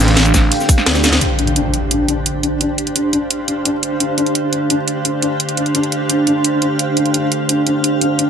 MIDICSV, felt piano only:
0, 0, Header, 1, 2, 480
1, 0, Start_track
1, 0, Key_signature, -1, "minor"
1, 0, Tempo, 348837
1, 1669, Time_signature, 4, 2, 24, 8
1, 11419, End_track
2, 0, Start_track
2, 0, Title_t, "Felt piano"
2, 0, Program_c, 0, 0
2, 1909, Note_on_c, 0, 62, 71
2, 2072, Note_off_c, 0, 62, 0
2, 2148, Note_on_c, 0, 62, 98
2, 2214, Note_off_c, 0, 62, 0
2, 2628, Note_on_c, 0, 62, 79
2, 2792, Note_off_c, 0, 62, 0
2, 2869, Note_on_c, 0, 62, 93
2, 2934, Note_off_c, 0, 62, 0
2, 3348, Note_on_c, 0, 62, 74
2, 3512, Note_off_c, 0, 62, 0
2, 3588, Note_on_c, 0, 62, 93
2, 3654, Note_off_c, 0, 62, 0
2, 4068, Note_on_c, 0, 62, 73
2, 4232, Note_off_c, 0, 62, 0
2, 4308, Note_on_c, 0, 62, 92
2, 4374, Note_off_c, 0, 62, 0
2, 4789, Note_on_c, 0, 62, 73
2, 4952, Note_off_c, 0, 62, 0
2, 5029, Note_on_c, 0, 62, 98
2, 5094, Note_off_c, 0, 62, 0
2, 5509, Note_on_c, 0, 62, 79
2, 5673, Note_off_c, 0, 62, 0
2, 5748, Note_on_c, 0, 62, 95
2, 5814, Note_off_c, 0, 62, 0
2, 6230, Note_on_c, 0, 62, 72
2, 6393, Note_off_c, 0, 62, 0
2, 6469, Note_on_c, 0, 62, 97
2, 6534, Note_off_c, 0, 62, 0
2, 6949, Note_on_c, 0, 62, 71
2, 7113, Note_off_c, 0, 62, 0
2, 7190, Note_on_c, 0, 62, 99
2, 7255, Note_off_c, 0, 62, 0
2, 7670, Note_on_c, 0, 62, 73
2, 7833, Note_off_c, 0, 62, 0
2, 7909, Note_on_c, 0, 62, 97
2, 7974, Note_off_c, 0, 62, 0
2, 8389, Note_on_c, 0, 62, 78
2, 8552, Note_off_c, 0, 62, 0
2, 8629, Note_on_c, 0, 62, 98
2, 8694, Note_off_c, 0, 62, 0
2, 9109, Note_on_c, 0, 62, 73
2, 9272, Note_off_c, 0, 62, 0
2, 9589, Note_on_c, 0, 62, 73
2, 9753, Note_off_c, 0, 62, 0
2, 9830, Note_on_c, 0, 62, 76
2, 9939, Note_off_c, 0, 62, 0
2, 10310, Note_on_c, 0, 62, 79
2, 10473, Note_off_c, 0, 62, 0
2, 10549, Note_on_c, 0, 62, 72
2, 10658, Note_off_c, 0, 62, 0
2, 11029, Note_on_c, 0, 62, 76
2, 11192, Note_off_c, 0, 62, 0
2, 11268, Note_on_c, 0, 62, 79
2, 11378, Note_off_c, 0, 62, 0
2, 11419, End_track
0, 0, End_of_file